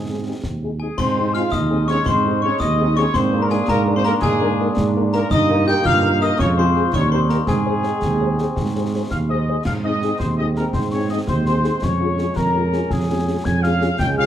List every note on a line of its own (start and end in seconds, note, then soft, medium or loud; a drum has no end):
0.00 0.31 G#2 medium
0.00 0.76 G#3 medium
0.00 0.67 C4 medium
0.00 0.76 C4 medium
0.00 0.44 G#4 medium
0.00 0.40 G#5 medium
0.08 0.14 C4 soft
0.08 0.14 D#4 soft
0.08 0.14 G#4 soft
0.27 0.33 C4 soft
0.27 0.33 D#4 soft
0.27 0.33 G#4 soft
0.44 0.89 D#2 medium
0.44 concert bass drum medium
0.44 snare medium
0.63 0.69 C4 soft
0.63 0.69 D#4 soft
0.63 0.69 G#4 soft
0.79 0.97 G#3 medium
0.79 0.88 C4 soft
0.79 0.87 D#4 soft
0.79 0.96 G#4 medium
0.79 0.87 G#4 soft
0.79 0.97 G#5 medium
0.79 0.86 G#5 medium
0.97 1.44 G#2 medium
0.97 3.11 G#3 medium
0.97 1.31 C4 medium
0.97 3.10 D#4 medium
0.97 1.34 C5 medium
0.97 1.35 C6 medium
0.97 1.32 C6 loud
0.97 concert bass drum medium
0.97 snare medium
0.97 crash medium
1.18 1.24 C4 medium
1.18 1.24 D#4 medium
1.18 1.24 G#4 medium
1.34 1.42 C4 medium
1.34 1.42 D#4 medium
1.34 1.51 F4 medium
1.34 1.42 G#4 medium
1.34 1.51 F5 loud
1.34 1.53 F6 medium
1.34 1.51 F6 medium
1.34 snare soft
1.52 1.97 D#2 medium
1.52 1.87 D#4 medium
1.52 1.89 D#5 medium
1.52 1.86 D#6 medium
1.52 1.87 D#6 medium
1.52 concert bass drum medium
1.52 snare medium
1.70 1.77 C4 medium
1.70 1.77 D#4 medium
1.70 1.77 G#4 medium
1.87 1.95 C4 medium
1.87 1.97 C#4 medium
1.87 1.95 D#4 medium
1.87 1.96 G#4 medium
1.87 2.05 C#5 loud
1.87 2.05 C#6 medium
1.87 snare medium
2.05 2.52 G#2 medium
2.05 2.41 C4 medium
2.05 2.40 C5 medium
2.05 2.43 C6 medium
2.05 2.40 C6 medium
2.05 concert bass drum medium
2.05 snare medium
2.25 2.32 C4 medium
2.25 2.32 D#4 medium
2.25 2.32 G#4 medium
2.42 2.49 C4 medium
2.42 2.52 C#4 medium
2.42 2.49 D#4 medium
2.42 2.49 G#4 medium
2.42 2.59 C#5 loud
2.42 2.59 C#6 medium
2.60 3.06 D#2 medium
2.60 2.95 D#4 medium
2.60 2.96 D#5 loud
2.60 2.94 D#6 loud
2.60 concert bass drum medium
2.60 snare medium
2.80 2.86 C4 medium
2.80 2.86 D#4 medium
2.80 2.86 G#4 medium
2.96 3.03 C4 medium
2.96 3.06 C#4 medium
2.96 3.03 D#4 medium
2.96 3.03 G#4 medium
2.96 3.15 C#5 loud
2.96 3.03 C#6 medium
2.96 3.14 C#6 loud
2.96 snare medium
3.14 3.60 G#2 medium
3.14 5.28 A#3 medium
3.14 3.43 C4 loud
3.14 5.31 D4 medium
3.14 3.42 C5 loud
3.14 3.20 C6 loud
3.14 3.40 C6 medium
3.14 concert bass drum medium
3.14 snare medium
3.33 3.39 A#3 medium
3.33 3.39 D4 medium
3.33 3.39 A#4 medium
3.41 3.51 A#3 medium
3.41 3.50 A#4 medium
3.41 3.50 A#5 medium
3.41 3.51 A#5 medium
3.50 3.59 G#3 medium
3.50 3.58 A#3 medium
3.50 3.58 D4 medium
3.50 3.68 G#4 loud
3.50 3.58 A#4 medium
3.50 3.67 G#5 medium
3.50 3.68 G#5 medium
3.50 snare medium
3.68 4.14 G#2 loud
3.68 3.94 A#3 medium
3.68 3.81 A#4 loud
3.68 3.94 A#5 loud
3.68 3.94 A#5 medium
3.68 concert bass drum medium
3.68 snare medium
3.87 3.94 A#3 medium
3.87 3.94 D4 medium
3.87 3.94 A#4 medium
3.95 4.04 C4 medium
3.95 4.00 C5 loud
3.95 3.99 C6 medium
3.95 4.05 C6 medium
4.04 4.13 A#3 medium
4.04 4.12 A#3 medium
4.04 4.12 D4 medium
4.04 4.12 A#4 loud
4.04 4.12 A#4 medium
4.04 4.22 A#5 loud
4.04 4.22 A#5 medium
4.04 snare medium
4.20 4.69 G#2 medium
4.20 4.91 G#3 loud
4.20 4.90 G#4 loud
4.20 4.91 G#5 medium
4.20 4.92 G#5 loud
4.20 concert bass drum medium
4.20 snare medium
4.41 4.48 A#3 medium
4.41 4.48 D4 medium
4.41 4.48 A#4 medium
4.61 4.67 A#3 medium
4.61 4.67 D4 medium
4.61 4.67 A#4 medium
4.77 5.22 G#2 medium
4.77 concert bass drum medium
4.77 snare medium
4.97 5.03 A#3 medium
4.97 5.03 D4 medium
4.97 5.03 A#4 medium
5.12 5.30 A#3 medium
5.12 5.20 A#3 medium
5.12 5.20 D4 medium
5.12 5.30 A#4 loud
5.12 5.20 A#4 medium
5.12 5.30 A#5 medium
5.12 5.30 A#5 loud
5.12 snare medium
5.31 5.76 G2 medium
5.31 6.37 A#3 medium
5.31 5.68 D#4 loud
5.31 6.37 D#4 medium
5.31 5.65 D#5 loud
5.31 5.65 D#6 loud
5.31 concert bass drum medium
5.31 snare medium
5.31 crash soft
5.50 5.57 A#3 medium
5.50 5.57 D#4 medium
5.50 5.57 A#4 medium
5.67 5.74 A#3 medium
5.67 5.74 D#4 medium
5.67 5.86 G4 loud
5.67 5.74 A#4 medium
5.67 5.84 G5 loud
5.67 5.73 G6 loud
5.67 5.84 G6 loud
5.67 snare soft
5.85 6.31 G2 loud
5.85 6.21 F4 loud
5.85 6.19 F5 loud
5.85 6.19 F6 loud
5.85 concert bass drum medium
5.85 snare medium
6.03 6.09 A#3 medium
6.03 6.09 D#4 medium
6.03 6.09 A#4 medium
6.21 6.28 A#3 medium
6.21 6.28 D#4 medium
6.21 6.38 D#4 medium
6.21 6.28 A#4 medium
6.21 6.40 D#5 loud
6.21 6.39 D#6 medium
6.21 6.40 D#6 medium
6.21 snare medium
6.39 6.85 F2 medium
6.39 6.94 G#3 medium
6.39 6.47 C#4 loud
6.39 6.94 F4 medium
6.39 6.47 C#5 loud
6.39 6.57 C#6 loud
6.39 concert bass drum medium
6.39 snare medium
6.56 6.65 F3 medium
6.56 6.92 C4 medium
6.56 6.64 F4 medium
6.56 6.64 G#4 medium
6.56 6.90 C5 loud
6.56 6.94 C6 medium
6.56 6.92 C6 medium
6.75 6.82 F3 medium
6.75 6.82 F4 medium
6.75 6.82 G#4 medium
6.93 7.39 D#2 medium
6.93 7.48 G3 medium
6.93 7.02 C#4 loud
6.93 7.48 D#4 medium
6.93 7.10 C#5 medium
6.93 7.11 C#6 loud
6.93 7.11 C#6 medium
6.93 concert bass drum medium
6.93 snare medium
7.11 7.19 A#3 medium
7.11 7.29 C4 medium
7.11 7.18 G4 medium
7.11 7.18 A#4 medium
7.11 7.19 C5 loud
7.11 7.18 C6 medium
7.11 7.29 C6 medium
7.28 7.50 A#3 medium
7.28 7.36 A#3 medium
7.28 7.37 G4 medium
7.28 7.37 A#4 medium
7.28 7.36 A#4 medium
7.28 7.35 A#5 medium
7.28 7.47 A#5 medium
7.28 snare medium
7.46 7.94 G#2 medium
7.46 9.42 G#3 medium
7.46 9.11 G#3 medium
7.46 9.42 C4 medium
7.46 9.06 G#4 medium
7.46 8.85 G#5 medium
7.46 9.07 G#5 medium
7.46 concert bass drum medium
7.46 snare medium
7.66 7.73 G#3 medium
7.66 7.73 G#4 medium
7.66 7.72 C5 medium
7.83 7.91 G#3 medium
7.83 7.90 G#4 medium
7.83 7.90 C5 medium
7.83 snare soft
8.02 8.48 D#2 medium
8.02 concert bass drum medium
8.02 snare medium
8.20 8.27 G#3 medium
8.20 8.27 G#4 medium
8.20 8.27 C5 medium
8.38 8.46 G#3 medium
8.38 8.46 G#4 medium
8.38 8.46 C5 medium
8.38 snare soft
8.56 9.02 G#2 medium
8.56 concert bass drum medium
8.56 snare medium
8.76 8.82 G#3 medium
8.76 8.82 G#4 medium
8.76 8.82 C5 medium
8.94 9.00 G#3 medium
8.94 9.00 G#4 medium
8.94 9.00 C5 medium
9.09 9.56 D#2 medium
9.09 9.18 F5 medium
9.09 9.17 F6 medium
9.09 concert bass drum medium
9.09 snare medium
9.27 9.36 G#3 medium
9.27 9.36 G#4 medium
9.27 9.36 C5 medium
9.27 9.62 D#5 medium
9.27 9.63 D#6 medium
9.48 9.55 G#3 medium
9.48 9.55 G#4 medium
9.48 9.55 C5 medium
9.64 10.11 G#2 medium
9.64 11.79 G#3 medium
9.64 11.79 C4 medium
9.64 9.72 F5 medium
9.64 9.73 F6 medium
9.64 concert bass drum medium
9.64 snare medium
9.64 crash medium
9.83 9.91 C4 medium
9.83 9.91 D#4 medium
9.83 9.91 G#4 medium
9.83 10.17 D#5 loud
9.83 10.18 D#6 medium
10.02 10.09 C4 medium
10.02 10.09 D#4 medium
10.02 10.09 G#4 medium
10.02 snare soft
10.18 10.65 D#2 medium
10.18 10.27 C5 medium
10.18 10.37 C6 medium
10.18 concert bass drum medium
10.18 snare medium
10.37 10.45 C4 medium
10.37 10.45 D#4 medium
10.37 10.46 G#4 medium
10.37 10.45 D#5 loud
10.37 10.44 D#6 medium
10.56 10.63 C4 medium
10.56 10.63 D#4 medium
10.56 10.63 G#4 medium
10.56 10.64 A#4 medium
10.56 10.73 A#5 medium
10.56 snare soft
10.73 11.19 G#2 medium
10.73 10.81 C5 medium
10.73 10.90 C6 medium
10.73 concert bass drum medium
10.73 snare medium
10.91 10.99 C4 medium
10.91 10.99 D#4 medium
10.91 10.99 G#4 medium
10.91 11.09 C#5 medium
10.91 11.08 C#6 medium
11.10 11.17 C4 medium
11.10 11.17 D#4 medium
11.10 11.17 G#4 medium
11.10 11.18 D#5 medium
11.10 11.16 D#6 medium
11.27 11.69 D#2 medium
11.27 11.45 C5 medium
11.27 11.35 C6 medium
11.27 concert bass drum medium
11.27 snare medium
11.46 11.54 C4 medium
11.46 11.53 D#4 medium
11.46 11.53 G#4 medium
11.46 11.80 C5 medium
11.46 11.80 C6 medium
11.46 snare soft
11.64 11.71 C4 medium
11.64 11.71 D#4 medium
11.64 11.71 G#4 medium
11.64 snare medium
11.81 12.28 F2 medium
11.81 13.95 G#3 medium
11.81 13.98 C#4 medium
11.81 12.36 C#5 loud
11.81 12.33 C#6 medium
11.81 concert bass drum medium
11.81 snare medium
12.00 12.06 C#4 medium
12.00 12.06 F4 medium
12.00 12.06 G#4 medium
12.18 12.24 C#4 medium
12.18 12.25 F4 medium
12.18 12.25 G#4 medium
12.18 snare medium
12.35 12.82 F2 medium
12.35 12.90 A#4 loud
12.35 12.65 A#5 loud
12.35 concert bass drum medium
12.35 snare medium
12.54 12.61 C#4 medium
12.54 12.61 F4 medium
12.54 12.61 G#4 medium
12.73 12.79 C#4 medium
12.73 12.79 F4 medium
12.73 12.79 G#4 medium
12.73 snare soft
12.90 13.36 F2 medium
12.90 13.45 G#4 medium
12.90 13.46 G#5 medium
12.90 concert bass drum medium
12.90 snare medium
13.10 13.16 C#4 medium
13.10 13.16 F4 medium
13.10 13.16 G#4 medium
13.27 13.34 C#4 medium
13.27 13.34 F4 medium
13.27 13.34 G#4 medium
13.44 13.90 F2 loud
13.44 13.63 G#5 loud
13.44 13.62 G#6 loud
13.44 concert bass drum medium
13.44 snare medium
13.62 13.70 C#4 medium
13.62 13.70 F4 medium
13.62 13.70 G#4 medium
13.62 13.99 F5 loud
13.62 13.97 F6 loud
13.62 snare medium
13.81 13.88 C#4 medium
13.81 13.88 F4 medium
13.81 13.88 G#4 medium
13.81 snare medium
13.98 14.26 C#2 loud
13.98 14.26 G#3 medium
13.98 14.26 C#4 medium
13.98 14.07 G5 loud
13.98 14.16 G6 loud
13.98 concert bass drum medium
13.98 snare medium
13.98 crash soft
14.17 14.25 C#4 medium
14.17 14.25 F4 medium
14.17 14.24 G#4 medium
14.17 14.26 F5 loud
14.17 14.26 F6 loud